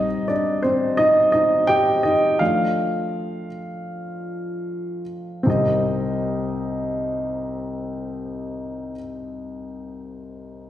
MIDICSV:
0, 0, Header, 1, 2, 480
1, 0, Start_track
1, 0, Key_signature, -3, "minor"
1, 0, Tempo, 705882
1, 1635, Tempo, 743494
1, 1636, Time_signature, 4, 2, 24, 8
1, 2595, Tempo, 786370
1, 3555, Tempo, 811908
1, 6650, End_track
2, 0, Start_track
2, 0, Title_t, "Upright piano"
2, 0, Program_c, 0, 0
2, 0, Control_c, 0, 64, 127
2, 0, Note_on_c, 0, 55, 44
2, 0, Note_on_c, 0, 60, 42
2, 0, Note_on_c, 0, 63, 62
2, 0, Note_on_c, 0, 75, 73
2, 169, Note_off_c, 0, 63, 0
2, 189, Note_on_c, 0, 74, 70
2, 199, Note_on_c, 0, 62, 52
2, 205, Note_off_c, 0, 75, 0
2, 416, Note_off_c, 0, 62, 0
2, 425, Note_on_c, 0, 72, 69
2, 434, Note_off_c, 0, 74, 0
2, 437, Note_off_c, 0, 60, 0
2, 437, Note_on_c, 0, 60, 54
2, 654, Note_off_c, 0, 60, 0
2, 662, Note_on_c, 0, 75, 80
2, 672, Note_off_c, 0, 72, 0
2, 672, Note_on_c, 0, 63, 61
2, 888, Note_off_c, 0, 75, 0
2, 892, Note_off_c, 0, 63, 0
2, 898, Note_on_c, 0, 75, 76
2, 911, Note_on_c, 0, 63, 59
2, 1126, Note_off_c, 0, 75, 0
2, 1133, Note_off_c, 0, 63, 0
2, 1138, Note_on_c, 0, 79, 92
2, 1150, Note_on_c, 0, 67, 69
2, 1375, Note_off_c, 0, 67, 0
2, 1382, Note_on_c, 0, 75, 71
2, 1393, Note_off_c, 0, 79, 0
2, 1396, Note_on_c, 0, 63, 55
2, 1438, Note_off_c, 0, 75, 0
2, 1450, Note_off_c, 0, 63, 0
2, 1627, Note_on_c, 0, 77, 77
2, 1632, Note_on_c, 0, 53, 44
2, 1636, Note_on_c, 0, 57, 41
2, 1639, Note_on_c, 0, 62, 49
2, 1641, Note_on_c, 0, 65, 56
2, 1643, Control_c, 0, 64, 0
2, 1644, Note_off_c, 0, 55, 0
2, 1776, Control_c, 0, 64, 127
2, 2324, Note_off_c, 0, 53, 0
2, 2326, Note_off_c, 0, 57, 0
2, 2327, Note_off_c, 0, 62, 0
2, 3281, Note_off_c, 0, 77, 0
2, 3288, Note_off_c, 0, 65, 0
2, 3535, Note_on_c, 0, 60, 63
2, 3550, Note_on_c, 0, 63, 58
2, 3556, Note_on_c, 0, 36, 57
2, 3562, Control_c, 0, 64, 0
2, 3562, Note_on_c, 0, 67, 52
2, 3575, Note_on_c, 0, 75, 66
2, 3654, Control_c, 0, 64, 127
2, 5587, Note_off_c, 0, 60, 0
2, 5601, Note_off_c, 0, 63, 0
2, 5607, Note_off_c, 0, 36, 0
2, 5614, Note_off_c, 0, 67, 0
2, 5626, Note_off_c, 0, 75, 0
2, 6650, End_track
0, 0, End_of_file